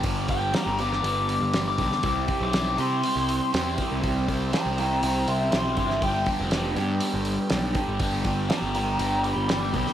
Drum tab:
HH |o-o-o-o-o-o-o-o-|o-o-o-o-o-o-o-o-|o-o-o-o-o-o-o-o-|o-o-o-o-o-o-o-o-|
SD |----o--o----o--o|----o-------o---|----o-------o--o|----o-------o---|
BD |o-o-----------o-|o-o-----------o-|o-o-----------o-|o-o-----------o-|

HH |o-o-o-o-o-o-o-o-|
SD |----o-------o--o|
BD |o-o-----------o-|